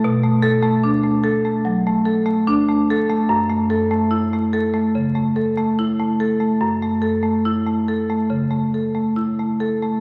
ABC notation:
X:1
M:4/4
L:1/16
Q:1/4=72
K:F#phr
V:1 name="Marimba"
z2 A2 z12 | z2 A2 z12 | z2 A2 z12 |]
V:2 name="Marimba"
B,, A,2 A, D A, A A, F, A, A A, D A, A A, | F,, A,2 A, E A, A A, C, A, A A, E A, A A, | F,, A,2 A, E A, A A, C, A, A A, E A, A A, |]